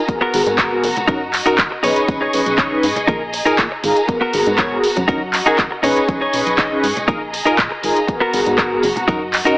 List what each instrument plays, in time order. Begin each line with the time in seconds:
Already playing: violin section A#5
0.08 violin section B3 F#4, analog polysynth B3 F#4 G#4 A#4, muted clean electric guitar stroke, kick, closed hi-hat
0.21 clean electric guitar B3 F#4 A#4
0.33 analog synth bass G#1, analog polysynth B3 F#4 G#4 A#4, open hi-hat, tambourine
0.47 analog synth bass G#2, closed hi-hat, tambourine
0.58 clean electric guitar B3 F#4 A#4, kick, clap, closed hi-hat, tambourine, low conga
0.71 analog polysynth B3 F#4 G#4 A#4
0.84 analog synth bass F#1, open hi-hat, tambourine
0.96 muted clean electric guitar stroke, closed hi-hat, tambourine, low conga
1.07 analog synth bass F#2, analog polysynth C#4 D#4 F#4 A#4, clean electric guitar D#4 F#4 A#4, violin section D#5, kick, closed hi-hat, tambourine
1.33 muted clean electric guitar stroke, clap, open hi-hat, tambourine
1.46 analog synth bass F#1, analog polysynth C#4 D#4 F#4 A#4, clean electric guitar D#4 F#4 A#4, closed hi-hat, tambourine
1.58 analog synth bass F#1, kick, clap, closed hi-hat
1.71 muted clean electric guitar stroke
1.83 analog synth bass B1, analog polysynth C#4 D#4 G#4 B4, clean electric guitar D#4 G#4 C#5, violin section G#4 C#6, open hi-hat, tambourine
1.96 closed hi-hat, tambourine
2.08 analog synth bass B1, analog polysynth C#4 D#4 G#4 B4, kick, closed hi-hat, tambourine
2.21 clean electric guitar D#4 G#4 C#5
2.33 analog synth bass B1, analog polysynth C#4 D#4 G#4 B4, open hi-hat, tambourine
2.46 analog synth bass B1, closed hi-hat, tambourine
2.58 clean electric guitar D#4 G#4 C#5, kick, clap, closed hi-hat, tambourine, low conga
2.71 analog polysynth C#4 D#4 G#4 B4
2.83 analog synth bass G#2, open hi-hat, tambourine
2.96 muted clean electric guitar stroke, closed hi-hat, tambourine, low conga
3.07 analog synth bass A#1, clean electric guitar D#4 G#4 A#4, analog polysynth D#4 F4 G#4 A#4, violin section A#5, kick, closed hi-hat, tambourine
3.33 muted clean electric guitar stroke, open hi-hat, tambourine
3.45 analog synth bass A#2, clean electric guitar D#4 G#4 A#4, analog polysynth D#4 F4 G#4 A#4, closed hi-hat, tambourine
3.58 analog synth bass A#2, kick, clap, closed hi-hat
3.71 muted clean electric guitar stroke
3.83 analog synth bass G#1, analog polysynth D#4 F4 G#4 A#4, muted clean electric guitar stroke, open hi-hat, tambourine
3.96 closed hi-hat, tambourine
4.08 analog polysynth B3 F#4 G#4 A#4, violin section B3 F#4, muted clean electric guitar stroke, kick, closed hi-hat
4.21 clean electric guitar B3 F#4 A#4
4.33 analog synth bass G#1, analog polysynth B3 F#4 G#4 A#4, open hi-hat, tambourine
4.46 analog synth bass G#2, closed hi-hat, tambourine
4.58 clean electric guitar B3 F#4 C#5, kick, clap, closed hi-hat, tambourine, low conga
4.71 analog polysynth B3 F#4 G#4 A#4
4.84 analog synth bass F#2, open hi-hat, tambourine
4.96 analog synth bass F#2, muted clean electric guitar stroke, closed hi-hat, tambourine, low conga
5.08 analog synth bass F#2, analog polysynth C#4 D#4 F#4 A#4, clean electric guitar D#4 F#4 A#4, violin section F#4 D#5, kick, closed hi-hat
5.33 muted clean electric guitar stroke, clap, open hi-hat, tambourine
5.46 analog synth bass F#1, analog polysynth C#4 D#4 F#4 A#4, clean electric guitar D#4 F#4 G#4, closed hi-hat, tambourine
5.58 analog synth bass F#1, kick, clap, closed hi-hat
5.71 muted clean electric guitar stroke
5.83 analog synth bass B1, analog polysynth C#4 D#4 G#4 B4, clean electric guitar D#4 G#4 C#5, violin section G#4 D#5 C#6, open hi-hat, tambourine
5.97 closed hi-hat, tambourine
6.08 analog synth bass B1, analog polysynth C#4 D#4 G#4 B4, kick, closed hi-hat
6.21 clean electric guitar D#4 G#4 C#5
6.33 analog synth bass B1, analog polysynth C#4 D#4 G#4 B4, open hi-hat, tambourine
6.46 analog synth bass B1, closed hi-hat, tambourine
6.58 clean electric guitar D#4 G#4 D#5, kick, clap, closed hi-hat, tambourine, low conga
6.71 analog polysynth C#4 D#4 G#4 B4
6.83 analog synth bass G#2, open hi-hat, tambourine
6.96 muted clean electric guitar stroke, closed hi-hat, tambourine, low conga
7.08 analog synth bass A#1, analog polysynth D#4 F4 G#4 A#4, clean electric guitar D#4 G#4 A#4, violin section D#5 A#5, kick, closed hi-hat, tambourine
7.33 muted clean electric guitar stroke, open hi-hat, tambourine
7.45 analog synth bass A#2, clean electric guitar D#4 G#4 A#4, analog polysynth D#4 F4 G#4 A#4, closed hi-hat, tambourine
7.58 analog synth bass A#2, kick, clap, closed hi-hat
7.71 muted clean electric guitar stroke
7.82 analog synth bass G#1, analog polysynth D#4 F4 G#4 A#4, muted clean electric guitar stroke, open hi-hat, tambourine
7.96 closed hi-hat, tambourine
8.07 analog polysynth B3 F#4 G#4 A#4, violin section B3 F#4, muted clean electric guitar stroke, kick, closed hi-hat
8.20 clean electric guitar B3 F#4 A#4
8.33 analog synth bass G#1, analog polysynth B3 F#4 G#4 A#4, open hi-hat, tambourine
8.46 analog synth bass G#2, closed hi-hat, tambourine
8.58 clean electric guitar B3 F#4 A#4, kick, clap, closed hi-hat, tambourine, low conga
8.71 analog polysynth B3 F#4 G#4 A#4
8.83 analog synth bass F#1, open hi-hat, tambourine
8.96 muted clean electric guitar stroke, closed hi-hat, tambourine, low conga
9.08 analog synth bass F#2, analog polysynth C#4 D#4 F#4 A#4, clean electric guitar D#4 F#4 A#4, violin section D#5, kick, closed hi-hat, tambourine
9.32 muted clean electric guitar stroke, clap, open hi-hat, tambourine
9.45 analog synth bass F#1, analog polysynth C#4 D#4 F#4 A#4, clean electric guitar D#4 F#4 A#4, closed hi-hat, tambourine